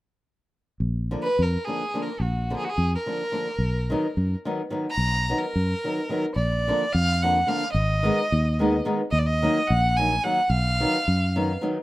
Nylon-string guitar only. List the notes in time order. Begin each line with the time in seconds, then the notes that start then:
1.11 D3 F3 A#3 D4
1.67 D3 F3 A#3 D4
1.94 D3 F3 A#3 D4
2.50 D3 F3 A#3 D4
3.06 D3 F3 A#3 D4
3.32 D3 F3 A#3 D4
3.90 D#3 F#3 B3 D#4
4.45 D#3 F#3 B3 D#4
4.70 D#3 F#3 B3 D#4
5.29 D#3 F#3 B3 D#4
5.84 D#3 F#3 B3 D#4
6.09 D#3 F#3 B3 D#4
6.68 D3 F3 A#3 D4
7.23 D3 F3 A#3 D4
7.47 D3 F3 A#3 D4
8.03 D#3 G#3 B3 D#4
8.59 D#3 G#3 B3 D#4
8.85 D#3 G#3 B3 D#4
9.42 D#3 F#3 A#3 D#4
9.98 D#3 F#3 A#3 D#4
10.24 D#3 F#3 A#3 D#4
10.80 D#3 F#3 B3 D#4
11.36 D#3 F#3 B3 D#4
11.61 D#3 F#3 B3 D#4